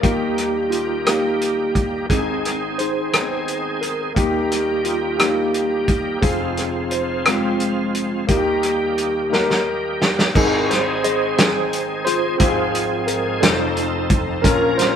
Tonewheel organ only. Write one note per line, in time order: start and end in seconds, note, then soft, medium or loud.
0.04 2.06 D#3 medium
0.04 2.06 G3 soft
0.04 2.06 A#3 soft
0.04 2.06 G4 medium
2.10 4.13 D#3 medium
2.10 4.12 G#3 soft
2.10 4.12 C4 soft
2.10 4.12 G#4 medium
4.16 6.18 D#3 medium
4.16 6.18 G3 soft
4.16 6.19 A#3 soft
4.16 4.23 F#4 soft
4.23 6.22 G4 medium
6.23 8.25 F3 medium
6.23 8.25 G#3 medium
6.23 8.25 C4 soft
6.23 8.25 F4 medium
8.29 10.30 D#3 medium
8.29 10.30 G3 soft
8.29 10.31 A#3 soft
8.29 10.31 G4 medium
10.35 12.36 D#3 medium
10.35 12.36 G#3 medium
10.35 12.36 C4 medium
10.35 12.36 G#4 medium
12.40 13.42 G#2 medium
12.40 13.41 F3 medium
12.40 13.42 G#3 medium
12.40 13.41 C4 medium
12.40 13.42 G#4 medium
13.42 14.43 F3 medium
13.42 14.44 C4 medium
13.42 14.44 D#4 medium
13.42 14.44 A4 medium
14.44 14.96 F3 medium
14.44 14.96 A#3 medium
14.44 14.96 C#4 medium
14.44 14.96 A#4 medium